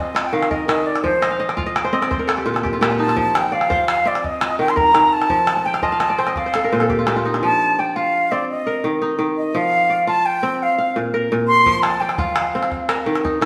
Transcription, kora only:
0.00 1.60 C4 medium
0.00 0.14 F4 medium
0.00 0.63 C5 medium
0.00 0.39 D5 medium
0.15 1.57 F4 medium
0.33 0.67 D#3 medium
0.51 1.78 A#4 medium
0.68 1.09 D#3 medium
1.04 2.16 F3 medium
1.22 1.39 D#5 medium
1.30 1.56 F5 medium
1.40 1.66 D#5 medium
1.49 1.72 D5 medium
1.57 2.45 F4 medium
1.57 2.57 F5 medium
1.66 1.93 D#5 medium
1.76 1.99 D5 medium
1.84 2.10 C5 medium
1.93 3.73 C4 medium
1.93 3.00 D#5 medium
2.02 3.05 D5 medium
2.11 3.29 C5 medium
2.19 2.60 A#4 medium
2.27 2.52 A4 medium
2.37 2.63 G4 medium
2.46 2.80 A#2 medium
2.46 2.72 F4 medium
2.54 2.87 A4 medium
2.63 2.81 G4 medium
2.73 2.90 F4 medium
2.81 3.22 A#2 medium
2.81 4.22 G4 medium
2.90 3.08 F4 medium
2.99 3.58 D#4 medium
3.08 3.69 F4 medium
3.16 4.29 F3 medium
3.52 4.65 D5 medium
3.70 4.41 F4 medium
3.70 4.89 C5 medium
4.05 5.85 C4 medium
4.41 5.82 F4 medium
4.59 4.93 D#3 medium
4.76 5.63 A#4 medium
4.94 5.35 D#3 medium
5.30 6.41 F3 medium
5.57 6.44 A5 medium
5.66 6.59 G5 medium
5.74 5.92 F5 medium
5.83 6.98 F4 medium
5.83 6.00 D#5 medium
5.92 6.92 F5 medium
6.00 6.27 D#5 medium
6.10 6.33 D5 medium
6.18 7.98 C4 medium
6.18 6.46 C5 medium
6.27 7.40 D#5 medium
6.37 7.31 D5 medium
6.46 6.72 C5 medium
6.55 6.78 A4 medium
6.64 6.87 A#4 medium
6.72 7.07 A#2 medium
6.72 7.91 C5 medium
6.81 7.14 A4 medium
6.90 7.07 G4 medium
6.99 7.16 F4 medium
7.08 7.47 A#2 medium
7.08 8.49 G4 medium
7.16 7.96 F4 medium
7.25 7.85 D#4 medium
7.34 8.90 D4 medium
7.43 8.53 F3 medium
7.79 8.90 D5 medium
7.96 9.47 F4 medium
8.32 10.12 C4 medium
8.67 9.94 A#4 medium
8.84 9.17 D#3 medium
9.02 9.96 D#4 medium
9.19 9.59 D#3 medium
9.55 10.65 F3 medium
9.90 11.01 D5 medium
10.07 11.59 F4 medium
10.43 12.23 C4 medium
10.78 11.78 F5 medium
10.96 11.31 A#2 medium
11.14 12.41 A#4 medium
11.32 11.71 A#2 medium
11.66 12.76 F3 medium
12.01 13.12 D5 medium
12.19 13.45 F4 medium
12.55 13.45 C4 medium
12.89 13.45 A#4 medium
13.06 13.40 D#3 medium
13.24 13.45 D#4 medium
13.41 13.45 D#3 medium

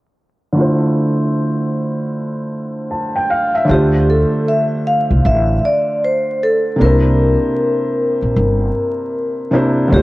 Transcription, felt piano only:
0.53 3.62 D3 medium
0.53 3.63 A3 medium
0.57 3.65 E4 medium
0.57 3.66 F4 medium
0.61 3.67 C5 medium
2.91 3.14 A5 medium
3.16 3.29 G5 medium
3.30 3.53 F5 medium
3.55 3.92 E5 medium
3.65 6.74 D3 medium
3.65 6.75 A3 soft
3.69 6.76 D4 medium
3.69 6.77 F4 soft
3.73 6.78 C5 medium
6.76 9.47 C3 medium
6.76 9.48 A#3 soft
6.80 9.49 D4 soft
6.80 9.50 E4 soft
6.84 9.51 C5 medium
9.51 9.91 C3 medium
9.51 9.91 A#3 soft
9.51 9.90 D4 medium
9.51 9.92 E4 medium
9.51 9.93 C5 medium
9.88 10.02 D3 medium
9.88 10.02 A3 medium
9.92 10.02 D4 medium
9.92 10.02 F4 medium
9.96 10.02 C5 medium

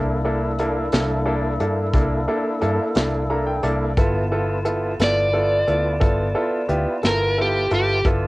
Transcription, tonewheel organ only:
0.00 3.93 A#3 medium
0.00 3.93 D4 medium
0.00 3.93 E4 medium
0.00 3.94 A4 medium
3.99 8.01 B3 medium
3.99 8.01 E4 medium
3.99 8.01 F4 medium
3.99 8.01 A5 medium
8.05 8.27 D4 medium
8.05 8.27 F4 medium
8.05 8.27 D5 medium
8.05 8.27 A5 medium

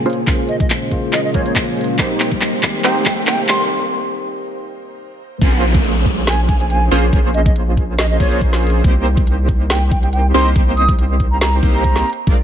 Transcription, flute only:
0.49 0.56 D#5 medium
0.60 0.66 D#5 medium
1.13 1.20 D#5 medium
1.24 1.31 D#5 medium
1.34 1.42 C#5 medium
1.46 1.52 C#5 medium
2.84 2.98 G5 medium
3.06 3.13 G5 medium
3.17 3.24 G5 medium
3.27 3.41 G5 medium
3.49 3.62 C6 medium
6.27 6.41 G#5 loud
6.49 6.56 G#5 medium
6.60 6.66 G#5 medium
6.70 6.84 G#5 medium
7.34 7.42 D#5 medium
7.46 7.52 D#5 medium
7.99 8.06 D#5 medium
8.10 8.16 D#5 medium
8.20 8.27 C#5 medium
8.32 8.38 C#5 medium
9.70 9.84 G5 loud
9.91 9.99 G5 medium
10.03 10.09 G5 medium
10.13 10.27 G5 medium
10.34 10.48 C6 medium
10.77 10.91 D#6 medium
11.31 11.39 A#5 medium
11.41 11.55 A#5 medium
11.74 12.10 A#5 medium

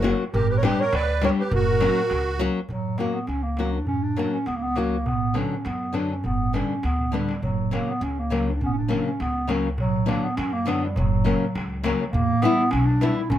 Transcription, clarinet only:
0.35 0.53 A#4 medium
0.51 0.59 B4 medium
0.58 0.65 C#5 medium
0.63 0.82 B4 medium
0.80 0.97 C#5 medium
0.96 1.24 D5 loud
1.25 1.31 C#5 medium
1.41 1.55 B4 medium
1.53 2.41 A#4 loud
2.70 3.00 F#3 medium
2.98 3.15 A#3 medium
3.13 3.29 B3 medium
3.27 3.44 C#4 medium
3.43 3.74 A#3 medium
3.72 3.87 D4 medium
3.87 4.04 C#4 loud
4.03 4.34 D4 medium
4.32 4.49 C#4 medium
4.47 4.57 B3 medium
4.55 4.64 A#3 medium
4.62 4.78 B3 medium
4.76 5.08 A#3 medium
5.07 5.38 B3 medium
5.37 5.68 C#4 medium
5.67 5.95 B3 medium
5.95 6.10 D4 medium
6.11 6.27 C#4 medium
6.25 6.56 B3 medium
6.54 6.87 C#4 medium
6.85 7.16 B3 medium
7.14 7.42 G3 medium
7.43 7.75 F#3 medium
7.74 7.90 A#3 medium
7.89 8.04 B3 medium
8.03 8.21 C#4 medium
8.19 8.51 A#3 medium
8.49 8.52 D4 medium
8.56 8.62 D4 medium
8.62 8.71 B3 medium
8.62 8.67 C#4 medium
8.70 8.77 C#4 medium
8.78 9.05 D4 medium
9.07 9.22 C#4 medium
9.21 9.50 B3 medium
9.79 10.09 F#3 medium
10.07 10.25 A#3 medium
10.24 10.38 B3 medium
10.36 10.54 C#4 loud
10.53 10.69 A#3 medium
10.68 10.85 B3 medium
10.84 10.99 G3 medium
10.97 11.84 F#3 medium
11.85 11.91 F#3 medium
11.99 12.13 F#3 medium
12.12 12.43 A#3 loud
12.42 12.72 B3 loud
12.71 12.87 C#4 loud
12.85 13.15 D4 loud
13.15 13.31 E4 medium
13.30 13.38 C#4 loud

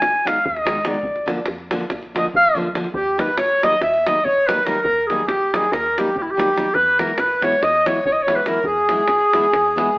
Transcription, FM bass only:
0.02 0.28 G#1 loud
0.45 0.80 D#2 loud
1.04 1.30 A#1 medium
1.48 1.74 F2 loud
1.91 2.18 A#1 loud
2.35 2.70 F2 medium
2.94 3.20 D#2 loud
3.38 3.64 A#1 medium
3.81 4.07 D#2 medium
4.25 4.60 A#1 medium
4.84 5.11 D#2 loud
5.28 5.54 A#1 loud
5.72 5.98 D#2 loud
6.15 6.51 A#1 loud
6.75 7.01 E2 loud
7.19 7.45 B1 medium
7.62 7.89 E2 loud
8.06 8.42 B1 medium
8.65 8.91 E2 loud
9.09 9.35 B1 medium
9.53 9.79 E2 loud

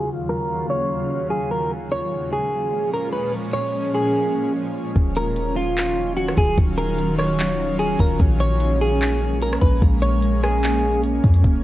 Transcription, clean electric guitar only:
0.29 0.67 A#4 medium
0.70 1.27 C#5 medium
1.30 1.50 G#4 medium
1.51 1.70 A#4 medium
1.92 2.30 C#5 medium
2.33 2.90 G#4 medium
2.94 3.12 A#4 medium
3.13 3.32 B4 medium
3.53 3.92 C#5 medium
3.94 4.51 G#4 medium
5.16 5.54 A#4 medium
5.56 6.13 F4 medium
6.17 6.36 F#4 medium
6.38 6.57 G#4 medium
6.78 7.16 A#4 medium
7.18 7.76 C#5 medium
7.79 7.99 G#4 medium
8.00 8.19 A#4 medium
8.40 8.78 C#5 medium
8.81 9.38 G#4 medium
9.42 9.61 A#4 medium
9.61 9.81 B4 medium
10.02 10.40 C#5 medium
10.43 11.00 G#4 medium

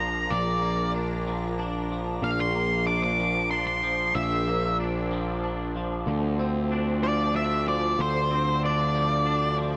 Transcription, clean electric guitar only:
0.00 0.30 A#2 soft
0.00 1.27 F3 soft
0.00 0.62 A#3 medium
0.00 0.94 D4 soft
0.30 2.22 A#2 medium
0.62 2.55 A#3 medium
0.94 1.58 D4 medium
1.27 1.91 F3 medium
1.59 2.87 D4 medium
1.91 3.19 F3 medium
2.22 3.83 A#2 medium
2.55 4.15 A#3 medium
2.87 3.51 D4 medium
3.19 3.83 F3 medium
3.52 4.79 D4 medium
3.83 5.11 F3 medium
4.15 5.75 A#2 medium
4.47 6.07 A#3 medium
4.80 5.43 D4 medium
5.12 5.75 F3 medium
5.44 6.42 D4 medium
5.76 7.03 F3 soft
6.07 7.67 D3 medium
6.39 7.99 C4 medium
6.71 7.35 D4 medium
7.03 7.67 F3 medium
7.35 8.63 D4 medium
7.67 8.94 F3 medium
7.99 9.58 D3 medium
8.31 9.77 C4 medium
8.63 9.25 D4 medium
8.95 9.58 F3 medium
9.26 9.77 D4 medium
9.58 9.77 F3 medium

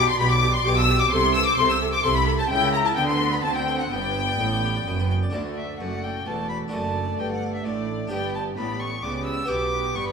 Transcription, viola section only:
0.20 0.28 G4 medium
0.43 0.51 G4 medium
0.65 0.73 G4 medium
0.88 0.96 G4 medium
1.11 1.19 A4 medium
1.35 1.43 A4 medium
1.58 1.66 A4 medium
1.81 1.89 A4 medium
2.04 2.12 A4 medium
2.28 2.36 A4 medium
2.52 2.94 E4 medium
2.98 3.44 B3 medium
3.44 3.91 C4 medium
3.91 5.11 B3 medium
5.33 5.76 A3 soft
5.79 6.25 A3 soft
6.26 6.71 A3 soft
6.72 7.63 A3 soft
7.65 8.10 A3 soft
8.11 8.56 B3 soft
8.57 9.02 B3 soft
9.04 9.48 B3 soft
9.49 10.12 B3 soft

